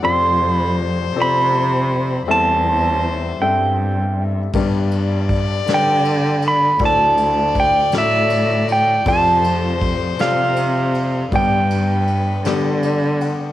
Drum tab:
RD |------|------|xxxxxx|xxxxxx|
SD |------|------|---o--|---o--|
BD |------|------|o-o---|o-o---|

RD |xxxxxx|xxxxxx|
SD |---o--|---o--|
BD |o-o---|o-----|